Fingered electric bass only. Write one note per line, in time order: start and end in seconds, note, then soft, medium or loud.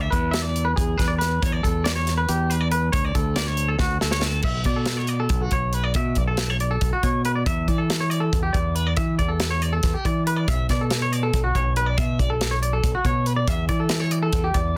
0.00 0.10 D2 medium
0.13 0.73 E2 loud
0.78 0.97 E2 medium
0.99 1.38 E2 medium
1.43 1.62 E2 medium
1.65 2.25 E2 medium
2.29 2.89 E2 medium
2.94 3.13 D2 medium
3.15 3.76 D2 loud
3.79 3.99 D2 medium
4.02 4.41 D2 medium
4.44 4.64 B1 medium
4.65 5.26 B2 medium
5.30 5.50 B1 medium
5.52 5.92 B1 medium
5.96 6.15 B2 medium
6.17 6.78 B1 medium
6.82 6.92 B1 medium
7.04 7.43 B2 medium
7.46 7.66 E2 medium
7.68 8.29 E3 medium
8.33 8.53 E2 medium
8.54 8.94 E2 medium
8.97 9.17 E3 medium
9.19 9.80 E2 medium
9.84 9.94 E2 medium
10.05 10.45 E3 medium
10.48 10.68 B1 medium
10.70 11.30 B2 medium
11.34 11.54 B1 loud
11.55 11.95 B1 medium
11.98 12.18 B2 medium
12.19 12.80 B1 medium
12.84 12.94 B1 medium
13.05 13.44 B2 medium
13.48 13.67 E2 medium
13.69 14.29 E3 medium
14.33 14.53 E2 loud
14.55 14.77 E2 loud